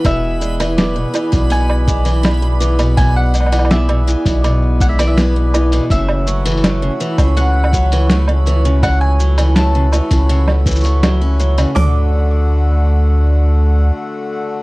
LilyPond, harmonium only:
\new Staff \with { instrumentName = "Harmonium" } { \time 4/4 \key d \lydian \tempo 4 = 82 << { <b gis'>1~ | <b gis'>1 | <a fis'>1~ | <a fis'>1 |
<d a fis'>1 | } \\ { e1~ | e1~ | e1~ | e1 |
r1 | } >> }